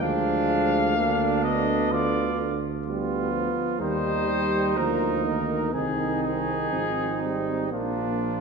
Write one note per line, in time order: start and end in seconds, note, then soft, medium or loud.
0.02 3.49 D2 medium
0.02 0.98 F3 medium
0.02 0.98 G#3 medium
0.02 0.94 D4 medium
0.02 1.41 F5 medium
0.96 1.91 D3 medium
0.96 1.45 A#3 medium
0.96 1.93 D4 medium
1.44 2.59 B3 medium
1.44 1.91 D#5 medium
1.91 2.58 D3 soft
1.91 2.59 F4 medium
1.91 2.38 D5 medium
2.86 3.34 G3 soft
2.86 3.82 B3 medium
2.86 3.77 F4 medium
3.33 3.82 F3 soft
3.80 4.78 D#2 soft
3.80 4.28 D#3 medium
3.80 4.78 G3 medium
3.80 5.70 D#4 medium
3.80 4.78 C5 medium
4.29 4.79 G3 medium
4.76 5.73 D2 soft
4.76 5.26 F3 medium
4.76 5.75 A#3 soft
4.76 5.72 A#4 medium
5.25 5.74 D#3 soft
5.73 6.70 C2 soft
5.73 6.74 D#3 soft
5.73 6.72 C4 soft
5.73 7.68 D#4 medium
5.73 6.22 G#4 medium
6.23 7.20 G#4 medium
6.73 7.74 G#1 soft
6.73 7.25 F3 soft
6.73 7.74 C4 medium
7.22 7.72 G3 soft
7.22 7.71 D#4 medium
7.72 8.40 A#1 soft
7.72 8.40 F3 soft
7.72 8.40 A#3 soft
7.72 8.40 D4 soft
7.72 8.40 F4 medium